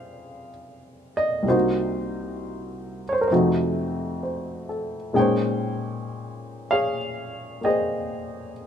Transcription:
0, 0, Header, 1, 2, 480
1, 0, Start_track
1, 0, Key_signature, -4, "minor"
1, 0, Tempo, 923077
1, 752, Time_signature, 4, 2, 24, 8
1, 4507, End_track
2, 0, Start_track
2, 0, Title_t, "Grand piano"
2, 0, Program_c, 0, 0
2, 0, Control_c, 0, 64, 127
2, 0, Note_on_c, 0, 41, 37
2, 0, Note_on_c, 0, 48, 31
2, 0, Note_on_c, 0, 56, 33
2, 0, Note_on_c, 0, 63, 33
2, 0, Note_on_c, 0, 68, 44
2, 0, Note_on_c, 0, 72, 44
2, 0, Note_on_c, 0, 77, 61
2, 253, Note_off_c, 0, 77, 0
2, 583, Note_off_c, 0, 68, 0
2, 585, Note_off_c, 0, 72, 0
2, 608, Note_on_c, 0, 75, 72
2, 742, Note_on_c, 0, 36, 39
2, 750, Note_off_c, 0, 48, 0
2, 751, Note_off_c, 0, 41, 0
2, 757, Note_on_c, 0, 48, 35
2, 758, Note_off_c, 0, 56, 0
2, 759, Control_c, 0, 64, 0
2, 761, Note_off_c, 0, 63, 0
2, 762, Note_off_c, 0, 75, 0
2, 771, Note_on_c, 0, 72, 66
2, 772, Note_on_c, 0, 58, 35
2, 777, Note_on_c, 0, 66, 49
2, 781, Note_on_c, 0, 63, 48
2, 796, Note_off_c, 0, 66, 0
2, 804, Note_on_c, 0, 66, 39
2, 865, Control_c, 0, 64, 127
2, 1579, Note_off_c, 0, 72, 0
2, 1607, Note_on_c, 0, 73, 55
2, 1626, Note_on_c, 0, 72, 57
2, 1629, Note_off_c, 0, 73, 0
2, 1653, Note_off_c, 0, 72, 0
2, 1671, Note_on_c, 0, 70, 56
2, 1691, Note_off_c, 0, 70, 0
2, 1704, Note_on_c, 0, 72, 55
2, 1705, Note_off_c, 0, 63, 0
2, 1706, Note_off_c, 0, 36, 0
2, 1714, Note_off_c, 0, 48, 0
2, 1718, Control_c, 0, 64, 0
2, 1721, Note_off_c, 0, 58, 0
2, 1721, Note_on_c, 0, 48, 42
2, 1723, Note_off_c, 0, 66, 0
2, 1723, Note_off_c, 0, 72, 0
2, 1724, Note_on_c, 0, 41, 48
2, 1726, Note_on_c, 0, 57, 41
2, 1727, Note_on_c, 0, 63, 42
2, 1731, Note_on_c, 0, 66, 48
2, 1820, Control_c, 0, 64, 127
2, 2200, Note_on_c, 0, 72, 34
2, 2439, Note_on_c, 0, 69, 36
2, 2577, Note_off_c, 0, 72, 0
2, 2665, Note_off_c, 0, 63, 0
2, 2668, Note_on_c, 0, 58, 37
2, 2671, Note_on_c, 0, 46, 40
2, 2671, Note_on_c, 0, 56, 40
2, 2673, Note_on_c, 0, 61, 38
2, 2673, Note_on_c, 0, 63, 39
2, 2675, Note_off_c, 0, 48, 0
2, 2676, Note_off_c, 0, 41, 0
2, 2677, Note_off_c, 0, 57, 0
2, 2677, Control_c, 0, 64, 0
2, 2678, Note_on_c, 0, 68, 47
2, 2679, Note_off_c, 0, 66, 0
2, 2685, Note_on_c, 0, 79, 62
2, 2701, Note_on_c, 0, 72, 52
2, 2701, Note_on_c, 0, 73, 49
2, 2773, Note_off_c, 0, 69, 0
2, 2777, Control_c, 0, 64, 127
2, 3487, Note_off_c, 0, 73, 0
2, 3488, Note_on_c, 0, 77, 73
2, 3489, Note_off_c, 0, 68, 0
2, 3494, Note_on_c, 0, 73, 44
2, 3497, Note_on_c, 0, 68, 47
2, 3507, Note_off_c, 0, 79, 0
2, 3624, Note_off_c, 0, 72, 0
2, 3950, Note_off_c, 0, 58, 0
2, 3958, Note_on_c, 0, 58, 33
2, 3972, Note_on_c, 0, 79, 36
2, 3975, Note_off_c, 0, 68, 0
2, 3976, Note_off_c, 0, 77, 0
2, 3977, Note_on_c, 0, 75, 69
2, 3982, Note_on_c, 0, 68, 48
2, 3987, Note_on_c, 0, 72, 46
2, 4424, Note_off_c, 0, 73, 0
2, 4507, Note_off_c, 0, 46, 0
2, 4507, Note_off_c, 0, 56, 0
2, 4507, Note_off_c, 0, 58, 0
2, 4507, Note_off_c, 0, 61, 0
2, 4507, Note_off_c, 0, 63, 0
2, 4507, Note_off_c, 0, 68, 0
2, 4507, Note_off_c, 0, 72, 0
2, 4507, Note_off_c, 0, 75, 0
2, 4507, Note_off_c, 0, 79, 0
2, 4507, End_track
0, 0, End_of_file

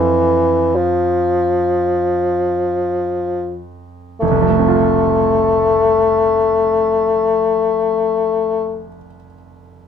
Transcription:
0, 0, Header, 1, 3, 480
1, 0, Start_track
1, 0, Key_signature, -1, "major"
1, 0, Tempo, 500000
1, 9484, End_track
2, 0, Start_track
2, 0, Title_t, "Grand piano"
2, 0, Program_c, 0, 0
2, 0, Control_c, 0, 64, 127
2, 0, Note_on_c, 0, 41, 37
2, 0, Note_on_c, 0, 69, 27
2, 0, Note_on_c, 0, 72, 27
2, 0, Note_on_c, 0, 77, 29
2, 3994, Note_off_c, 0, 41, 0
2, 4001, Note_off_c, 0, 69, 0
2, 4007, Note_off_c, 0, 72, 0
2, 4010, Note_off_c, 0, 77, 0
2, 4053, Note_on_c, 0, 29, 38
2, 4070, Control_c, 0, 64, 0
2, 4138, Note_on_c, 0, 36, 32
2, 4233, Note_on_c, 0, 53, 30
2, 4273, Control_c, 0, 64, 127
2, 4315, Note_on_c, 0, 57, 31
2, 4405, Note_on_c, 0, 60, 30
2, 4495, Note_on_c, 0, 65, 31
2, 8522, Note_off_c, 0, 29, 0
2, 8607, Note_off_c, 0, 36, 0
2, 8702, Note_off_c, 0, 53, 0
2, 8784, Note_off_c, 0, 57, 0
2, 8875, Note_off_c, 0, 60, 0
2, 8965, Note_off_c, 0, 65, 0
2, 9484, End_track
3, 0, Start_track
3, 0, Title_t, "Bassoon"
3, 0, Program_c, 1, 70
3, 0, Note_on_c, 1, 52, 57
3, 729, Note_on_c, 1, 53, 44
3, 744, Note_off_c, 1, 52, 0
3, 3479, Note_off_c, 1, 53, 0
3, 4034, Note_on_c, 1, 57, 47
3, 8504, Note_off_c, 1, 57, 0
3, 9484, End_track
0, 0, End_of_file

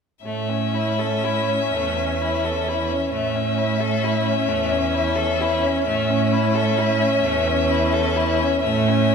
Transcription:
0, 0, Header, 1, 5, 480
1, 0, Start_track
1, 0, Key_signature, 3, "major"
1, 0, Tempo, 978793
1, 122, Time_signature, 6, 3, 24, 8
1, 1083, Tempo, 916031
1, 3963, Tempo, 961538
1, 4684, End_track
2, 0, Start_track
2, 0, Title_t, "Violin"
2, 0, Program_c, 0, 40
2, 123, Note_on_c, 0, 76, 34
2, 1548, Note_off_c, 0, 76, 0
2, 1568, Note_on_c, 0, 76, 36
2, 2982, Note_off_c, 0, 76, 0
2, 3000, Note_on_c, 0, 76, 45
2, 4410, Note_off_c, 0, 76, 0
2, 4431, Note_on_c, 0, 76, 51
2, 4684, Note_off_c, 0, 76, 0
2, 4684, End_track
3, 0, Start_track
3, 0, Title_t, "Viola"
3, 0, Program_c, 1, 41
3, 123, Note_on_c, 1, 61, 31
3, 1549, Note_off_c, 1, 61, 0
3, 1565, Note_on_c, 1, 61, 36
3, 2980, Note_off_c, 1, 61, 0
3, 2997, Note_on_c, 1, 61, 46
3, 4409, Note_off_c, 1, 61, 0
3, 4434, Note_on_c, 1, 61, 52
3, 4684, Note_off_c, 1, 61, 0
3, 4684, End_track
4, 0, Start_track
4, 0, Title_t, "Violin"
4, 0, Program_c, 2, 40
4, 126, Note_on_c, 2, 57, 30
4, 239, Note_on_c, 2, 61, 28
4, 246, Note_off_c, 2, 57, 0
4, 363, Note_on_c, 2, 64, 26
4, 371, Note_off_c, 2, 61, 0
4, 485, Note_on_c, 2, 69, 25
4, 493, Note_off_c, 2, 64, 0
4, 605, Note_on_c, 2, 64, 28
4, 613, Note_off_c, 2, 69, 0
4, 728, Note_on_c, 2, 61, 28
4, 735, Note_off_c, 2, 64, 0
4, 851, Note_on_c, 2, 57, 32
4, 859, Note_off_c, 2, 61, 0
4, 965, Note_on_c, 2, 61, 27
4, 973, Note_off_c, 2, 57, 0
4, 1083, Note_on_c, 2, 64, 31
4, 1090, Note_off_c, 2, 61, 0
4, 1205, Note_on_c, 2, 69, 28
4, 1213, Note_off_c, 2, 64, 0
4, 1331, Note_on_c, 2, 64, 30
4, 1339, Note_off_c, 2, 69, 0
4, 1445, Note_on_c, 2, 61, 28
4, 1453, Note_off_c, 2, 64, 0
4, 1562, Note_off_c, 2, 61, 0
4, 1565, Note_on_c, 2, 57, 33
4, 1683, Note_on_c, 2, 61, 31
4, 1690, Note_off_c, 2, 57, 0
4, 1800, Note_on_c, 2, 64, 31
4, 1807, Note_off_c, 2, 61, 0
4, 1916, Note_on_c, 2, 69, 33
4, 1924, Note_off_c, 2, 64, 0
4, 2041, Note_on_c, 2, 64, 32
4, 2049, Note_off_c, 2, 69, 0
4, 2160, Note_on_c, 2, 61, 35
4, 2168, Note_off_c, 2, 64, 0
4, 2277, Note_on_c, 2, 57, 40
4, 2285, Note_off_c, 2, 61, 0
4, 2396, Note_on_c, 2, 61, 34
4, 2404, Note_off_c, 2, 57, 0
4, 2511, Note_on_c, 2, 64, 36
4, 2519, Note_off_c, 2, 61, 0
4, 2626, Note_on_c, 2, 69, 37
4, 2634, Note_off_c, 2, 64, 0
4, 2759, Note_on_c, 2, 64, 37
4, 2767, Note_off_c, 2, 69, 0
4, 2873, Note_on_c, 2, 61, 36
4, 2881, Note_off_c, 2, 64, 0
4, 2996, Note_off_c, 2, 61, 0
4, 2999, Note_on_c, 2, 57, 43
4, 3120, Note_on_c, 2, 61, 40
4, 3128, Note_off_c, 2, 57, 0
4, 3236, Note_on_c, 2, 64, 38
4, 3244, Note_off_c, 2, 61, 0
4, 3356, Note_on_c, 2, 69, 37
4, 3364, Note_off_c, 2, 64, 0
4, 3480, Note_on_c, 2, 64, 41
4, 3488, Note_off_c, 2, 69, 0
4, 3593, Note_on_c, 2, 61, 43
4, 3601, Note_off_c, 2, 64, 0
4, 3721, Note_on_c, 2, 57, 49
4, 3729, Note_off_c, 2, 61, 0
4, 3840, Note_on_c, 2, 61, 43
4, 3848, Note_off_c, 2, 57, 0
4, 3960, Note_on_c, 2, 64, 44
4, 3968, Note_off_c, 2, 61, 0
4, 4076, Note_on_c, 2, 69, 44
4, 4084, Note_off_c, 2, 64, 0
4, 4190, Note_on_c, 2, 64, 46
4, 4198, Note_off_c, 2, 69, 0
4, 4308, Note_on_c, 2, 61, 41
4, 4316, Note_off_c, 2, 64, 0
4, 4423, Note_off_c, 2, 61, 0
4, 4426, Note_on_c, 2, 57, 49
4, 4550, Note_on_c, 2, 61, 44
4, 4558, Note_off_c, 2, 57, 0
4, 4682, Note_off_c, 2, 61, 0
4, 4684, End_track
5, 0, Start_track
5, 0, Title_t, "Cello"
5, 0, Program_c, 3, 42
5, 120, Note_on_c, 3, 45, 35
5, 730, Note_off_c, 3, 45, 0
5, 847, Note_on_c, 3, 40, 35
5, 1445, Note_off_c, 3, 40, 0
5, 1564, Note_on_c, 3, 45, 38
5, 2160, Note_off_c, 3, 45, 0
5, 2281, Note_on_c, 3, 40, 42
5, 2882, Note_off_c, 3, 40, 0
5, 3000, Note_on_c, 3, 45, 48
5, 3596, Note_off_c, 3, 45, 0
5, 3716, Note_on_c, 3, 40, 49
5, 4310, Note_off_c, 3, 40, 0
5, 4429, Note_on_c, 3, 45, 56
5, 4684, Note_off_c, 3, 45, 0
5, 4684, End_track
0, 0, End_of_file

